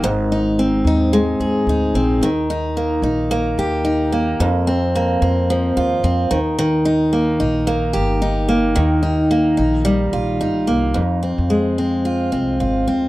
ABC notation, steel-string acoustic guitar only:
X:1
M:4/4
L:1/8
Q:"Swing 16ths" 1/4=110
K:Eb
V:1 name="Steel-string acoustic guitar"
A,, E C E A, A E C | E, E B, E B, G E B, | F,, C B, C F, F C E, | E, E B, E B, G E B, |
E, E B, E G, F E B, | F,, C A, C F C F C |]